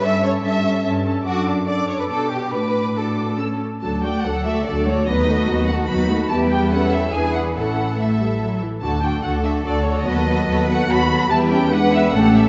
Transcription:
<<
  \new Staff \with { instrumentName = "Violin section" } { \time 3/4 \key d \major \tempo 4 = 144 a''8 a''8 a''8 a''8 a''8 a''8 | d'''4 d'''4 d'''4 | d'''4 d'''4 e'''8 r8 | a''8 g''8 fis''8 e''8 d''8 cis''8 |
dis''4. fis''8 b''4 | a''8 g''8 fis''8 e''8 gis''8 fis''8 | fis''4 e''4. r8 | a''8 g''8 fis''8 e''8 d''8 cis''8 |
dis''4. fis''8 b''4 | a''8 g''8 fis''8 e''8 fis''8 e''8 | }
  \new Staff \with { instrumentName = "Violin section" } { \time 3/4 \key d \major << { e''8 cis''8 e''4 r4 | fis'8 d'8 d''8 cis''16 b'16 a'8 g'8 | b'4 a'4. r8 | a'8 d''8 a'8 d''8 a'8 d''8 |
b'8 a'8 b'8 a'8 b'8 a'8 | b'2 b'4 | a'4 a'4. r8 | a'8 a'8 a'8 a'8 a'8 a'8 |
a'8 a'8 a'8 a'8 a'8 a'8 | b'4 b'4 a'4 | } \\ { r2. | r2. | r2. | a'8 fis'8 a'8 fis'8 a'8 fis'8 |
dis'8 fis'8 dis'8 fis'8 dis'8 fis'8 | e'2 e'4 | e'4 e'4. r8 | fis'8 fis'8 fis'8 fis'8 fis'8 fis'8 |
fis'8 fis'8 fis'8 fis'8 fis'8 fis'8 | e'4 e'8 e'8 g'4 | } >> }
  \new Staff \with { instrumentName = "Cello section" } { \time 3/4 \key d \major g,4 g,4 g,4 | fis,2 b,4 | a,2~ a,8 r8 | r4 a'2 |
b'4 fis'2 | g'4 a'4 gis'4 | a'2~ a'8 r8 | r4 a'2 |
b'4 b'4 fis'4 | g'4 b'4 a'4 | }
  \new Staff \with { instrumentName = "Viola section" } { \time 3/4 \key d \major << { a'8 a'8 a'8 a'8 a'8 a'8 | a'4 a'4 g'4 | fis'4 fis'4 a'8 r8 | d'8 fis'8 d'8 fis'8 d'8 fis'8 |
b8 dis'8 b8 dis'8 b8 dis'8 | b4 cis'4 d'4 | cis'4 a8 g8 fis8 e8 | d'8 d'8 d'8 d'8 d'8 d'8 |
b8 b8 b8 b8 b8 b8 | b8 cis'8 d'4 cis'4 | } \\ { cis'8 cis'8 cis'8 cis'8 cis'8 cis'8 | d'4 d'4 d'4 | d'4 d'4 cis'8 r8 | fis8 a8 fis8 a8 fis8 a8 |
fis8 a8 fis8 a8 fis8 a8 | g2 e4 | e4 r2 | d8 d8 d8 d8 d8 d8 |
fis8 fis8 fis8 fis8 fis8 fis8 | g4 gis4 a4 | } >> }
  \new Staff \with { instrumentName = "Double bass section" } { \clef bass \time 3/4 \key d \major r2. | r2. | r2. | d,4 d,4 d,4 |
dis,4 dis,4 dis,4 | e,2 e,4 | a,,2~ a,,8 r8 | d,4 d,4 d,4 |
dis,4 dis,4 dis,4 | e,2 a,,4 | }
>>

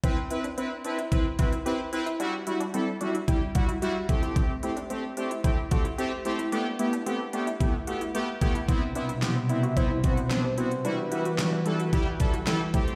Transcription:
<<
  \new Staff \with { instrumentName = "Soft synth lead" } { \time 4/4 \key c \lydian \tempo 4 = 111 r1 | r1 | r1 | r1 |
r4. e''8 c''4. c''8 | b'2 r2 | }
  \new Staff \with { instrumentName = "Synth pluck" } { \time 4/4 \key c \lydian c'8 e'16 d'16 c'8 d'16 e'16 e'8 fis'16 e'16 g'8 e'16 e'16 | d'8 e'16 d'16 c'8 d'16 e'16 e'8 fis'16 e'16 g'8 e'16 e'16 | c'8 e'16 d'16 c'8 d'16 e'16 e'8 fis'16 e'16 g'8 e'16 e'16 | d'8 e'16 d'16 c'8 d'16 e'16 e'8 fis'16 e'16 g'8 e'16 e'16 |
c'8 d'16 e'16 c'16 c'16 e'16 fis'16 e'16 e'8 fis'8 g'16 e'8 | d'8 e'16 fis'16 d'16 d'16 e'16 fis'16 e'16 e'8 fis'8 g'16 e'8 | }
  \new Staff \with { instrumentName = "Analog synth pad" } { \time 4/4 \key c \lydian r1 | r1 | r1 | r1 |
<b, c g d' e'>1 | <e e' fis' g' b'>2.~ <e e' fis' g' b'>8 <a c'>8 | }
  \new Staff \with { instrumentName = "Analog polysynth" } { \time 4/4 \key c \lydian <c' e' b'>16 r16 <c' e' b'>16 r16 <c' e' b'>16 r16 <c' e' b'>16 r16 <c' e' b'>16 r16 <c' e' b'>16 r16 <c' e' b'>16 r16 <c' e' b'>16 r16 | <g e' fis'>16 r16 <g e' fis'>16 r16 <g e' a'>16 r16 <g e' fis'>16 r16 <g e' g'>16 r16 <g e' fis'>16 r16 <g e' fis'>16 r16 <a c' g'>8~ | <a c' g'>8 <a c' g'>16 r16 <a c' g'>16 r16 <a c' g'>16 r16 <a c' g'>16 r16 <a c' g'>16 r16 <a c' g'>16 r16 <a c' g'>16 r16 | <a b g'>16 r16 <a b g'>16 r16 <a b g'>16 r16 <a b g'>16 r16 <a b g'>16 r16 <a b g'>16 r16 <a b g'>16 r16 <a b g'>16 r16 |
<b c' e'>16 r16 <b c' e'>16 r16 <b c' g'>16 r16 <b c' e'>16 r16 <b c' e'>16 r16 <b c' fis'>16 r16 <b c' d'>16 r16 <b c' fis'>16 r16 | <g e' fis'>16 r16 <g e' fis'>16 r16 <g e' fis'>16 r16 <g e' a'>16 r16 <g e' g'>16 r16 <g e' a'>16 r16 <g e' a'>16 r16 <a c' g'>8 | }
  \new DrumStaff \with { instrumentName = "Drums" } \drummode { \time 4/4 <hh bd>8 hh16 hh16 hh8 hh16 hh16 <hh bd>8 <hh bd>16 hh16 hh8 hh16 hh16 | hh8 hh16 hh16 hh8 hh16 hh16 <hh bd>8 <hh bd>16 hh16 hh8 <hh bd>16 hh16 | <hh bd>8 hh16 hh16 hh8 hh16 hh16 <hh bd>8 <hh bd>16 hh16 hh8 hh16 hh16 | hh8 hh16 hh16 hh8 hh16 hh16 <hh bd>8 hh16 hh16 hh8 <hh bd>16 hh16 |
<hh bd>8 hh16 hh16 <hh sn>8 hh16 hh16 <hh bd>8 <hh bd>16 hh16 <hh sn>8 hh16 hh16 | hh8 hh16 hh16 <hh sn>8 hh16 hh16 <hh bd>8 <hh bd>16 hh16 <hh sn>8 <hh bd>16 hh16 | }
>>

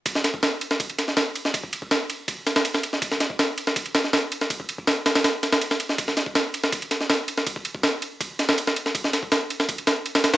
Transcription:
\new DrumStaff \with { instrumentName = "Drums" } \drummode { \time 4/4 \tempo 4 = 162 <bd cymr>16 sn16 <cymr sn>16 bd16 <cymr sn>8 cymr16 sn16 <bd cymr>16 cymr16 <cymr sn>16 sn16 <cymr sn>8 cymr16 sn16 | <bd cymr>16 bd16 cymr16 bd16 <cymr sn>8 cymr8 <bd cymr>8 <cymr sn>16 sn16 cymr16 sn16 cymr16 sn16 | <bd cymr>16 sn16 <cymr sn>16 bd16 <cymr sn>8 cymr16 sn16 <bd cymr>16 cymr16 <cymr sn>16 sn16 <cymr sn>8 cymr16 sn16 | <bd cymr>16 bd16 cymr16 bd16 <cymr sn>8 <cymr sn>16 <cymr sn>16 <cymr sn>8 <cymr sn>16 sn16 cymr16 sn16 cymr16 sn16 |
<bd cymr>16 sn16 <cymr sn>16 bd16 <cymr sn>8 cymr16 sn16 <bd cymr>16 cymr16 <cymr sn>16 sn16 <cymr sn>8 cymr16 sn16 | <bd cymr>16 bd16 cymr16 bd16 <cymr sn>8 cymr8 <bd cymr>8 <cymr sn>16 sn16 cymr16 sn16 cymr16 sn16 | <bd cymr>16 sn16 <cymr sn>16 bd16 <cymr sn>8 cymr16 sn16 <bd cymr>16 cymr16 <cymr sn>8 cymr16 <cymr sn>16 <cymr sn>16 <cymr sn>16 | }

